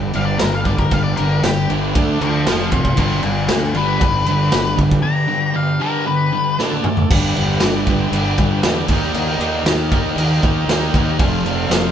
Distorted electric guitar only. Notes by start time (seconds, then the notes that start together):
Already playing: G2 D3
0.14 G2 D3
0.40 G2 D3
0.66 G2 D3
0.91 G2 D3
1.18 G2 D3
1.43 G2 D3
1.69 G2 D3 G3
1.95 D3 A3 D4
2.20 D3 A3
2.46 F2 C3 F3
2.73 F2 C3
2.97 G2 D3 G3
3.24 G2 D3
3.50 G2 D3
3.75 G2 D3 G3
4.02 G2 D3
4.28 G2 D3
4.53 G2 D3
4.77 G2 D3
5.03 G2 D3
5.28 G2 D3
5.54 G2 D3
5.80 G2 D3 G3
6.07 G2 D3
6.32 G2 D3
6.59 D3 A3 D4
6.83 D3 A3
7.11 G2 D3 G3
7.35 G2 D3 G3
7.61 G2 D3 G3
7.87 G2 D3 G3
8.12 G2 D3 G3
8.39 G2 D3 G3
8.65 G2 D3 G3
8.92 D#3 A#3 D#4
9.13 D#3 A#3 D#4
9.40 D#3 A#3 D#4
9.66 D#3 A#3 D#4
9.92 D#3 A#3 D#4
10.16 D#3 A#3 D#4
10.43 D#3 A#3 D#4
10.68 D#3 A#3 D#4
10.93 D#3 A#3 D#4
11.21 F2 C3 F3
11.45 F2 C3 F3
11.69 F2 C3 F3